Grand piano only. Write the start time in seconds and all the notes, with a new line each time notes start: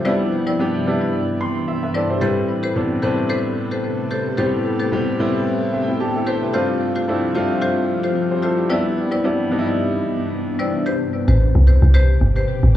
0.05 G3 B3 D4 E4
0.59 G3 B3 D4 G4
0.86 G3 B3 D4 E4
1.41 C6
1.68 E5
1.83 B4 E5
1.95 A4 D5
2.10 G4 C5
2.21 A2 G3 C4 E4 B4
2.75 A2 G3 B3 C4 D4
3.02 A2 G3 C4 D4 B4
4.38 A2 G3 B3 C4 G4
4.92 A2 G3 B3 C4 G4
5.19 A2 G3 B3 C4 E4
5.73 G3 C4 E5
5.82 G5
5.88 B3 E4
6.00 D4 G4 A5
6.15 E4 A4
6.27 G4 C5 G5
6.42 E4 B4
6.54 G2 A3 C4 D4 F4
7.08 G2 A3 C4 D4 E4
7.35 G2 A3 C4 D4 F4
8.31 G4 C5
8.43 E4 A4
8.58 D4 G4
8.70 G3 B3 D4 E4
9.24 G3 B3 D4 E4
9.51 G3 B3 D4 D#4
9.59 E4